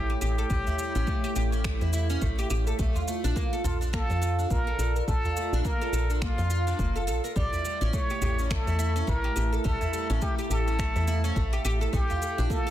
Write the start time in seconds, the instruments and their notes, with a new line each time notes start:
Already playing: fm bass A1, ambient pad A3 E4 A4 C#5, muted trumpet G4
0.10 oud G4
0.21 fm bass A1, oud G4, muted trumpet G4, shaker
0.38 oud A4, shaker
0.50 fm bass A1, oud G3, kick, shaker
0.67 oud E4, udu, shaker
0.78 oud G3, shaker
0.95 fm bass A1, oud C#4, shaker
1.07 oud A3, kick, shaker
1.24 oud G4, shaker
1.36 fm bass A1, oud G4, shaker
1.52 oud C#4, shaker
1.64 oud A3, finger snap, kick, shaker
1.81 fm bass E2, oud E4, shaker
1.93 oud E4, shaker
2.10 oud C#4, shaker
2.22 fm bass A1, oud A3, kick, shaker
2.39 oud G4, shaker
2.50 fm bass A1, oud G4, shaker
2.67 oud A4, shaker
2.79 fm bass A#1, oud A3, kick, shaker
2.85 ambient pad F4
2.95 oud F4, udu, shaker
3.08 oud A3, shaker
3.24 fm bass A#1, oud D4, shaker
3.36 oud A#3, kick, shaker
3.53 oud A4, shaker
3.64 fm bass A#1, muted trumpet F4, oud A4, udu, shaker
3.81 oud D4, shaker
3.86 ambient pad D5
3.93 oud A#3, muted trumpet A4, finger snap, kick, shaker
4.10 fm bass F2, oud F4, shaker
4.22 oud F4, shaker
4.39 oud D4, shaker
4.51 fm bass A#1, oud A#3, muted trumpet A#4, kick, shaker
4.67 oud A4
4.79 fm bass A#1, oud A4, shaker
4.96 oud A#4, shaker
5.08 fm bass A#1, oud A3, muted trumpet A4, kick, shaker
5.24 oud F4, udu, shaker
5.37 oud A3, shaker
5.53 fm bass A#1, oud D4, shaker
5.65 oud A#3, muted trumpet A#4, kick, shaker
5.81 oud A4, shaker
5.93 fm bass A#1, oud A4, shaker
6.10 oud D4, shaker
6.22 oud A#3, muted trumpet F4, finger snap, kick, shaker
6.38 fm bass F2, oud F4, shaker
6.50 oud F4, shaker
6.67 oud D4, shaker
6.79 fm bass F1, oud A#3, kick, shaker
6.96 oud A4, shaker
7.07 fm bass A#1, oud A4, shaker
7.24 oud A#4, shaker
7.36 fm bass A1, oud G3, ambient pad A3, muted trumpet D5, kick, shaker
7.53 oud E4, ambient pad E4, udu, shaker
7.62 oud G3, ambient pad E5, shaker
7.81 fm bass A1, oud C#4, shaker
7.93 oud A3, muted trumpet C#5, kick, shaker
7.98 ambient pad A5
8.10 oud G4, shaker
8.22 fm bass A1, oud G4, udu, shaker
8.39 oud C#4, shaker
8.50 oud A3, muted trumpet A4, finger snap, kick, shaker
8.67 fm bass E2, oud E4, shaker
8.79 oud E4, shaker
8.96 oud C#4, shaker
9.07 fm bass A1, oud A3, muted trumpet A#4, kick, shaker
9.24 oud G4
9.36 fm bass A1, oud G4, shaker
9.52 oud A4, shaker
9.64 fm bass A1, oud G3, muted trumpet A4, kick, shaker
9.81 oud E4, udu, shaker
9.93 oud G3, shaker
10.10 fm bass A1, oud C#4, shaker
10.22 oud A3, muted trumpet G4, kick, shaker
10.39 oud G4, shaker
10.50 fm bass A1, oud G4, muted trumpet A4, shaker
10.68 oud C#4, shaker
10.79 oud A3, finger snap, kick, shaker
10.96 fm bass E2, oud E4, shaker
11.07 oud E4, shaker
11.24 oud C#4, shaker
11.36 fm bass A1, oud A3, kick, shaker
11.53 oud G4, shaker
11.65 fm bass A1, oud G4, shaker
11.81 oud A4, shaker
11.93 fm bass A#1, oud A3, muted trumpet G4, kick, shaker
11.99 ambient pad F4
12.10 oud F4, udu, shaker
12.22 oud A3, shaker
12.38 fm bass A#1, oud D4, shaker
12.50 oud A#3, muted trumpet A4, ambient pad D5, kick, shaker
12.67 oud A4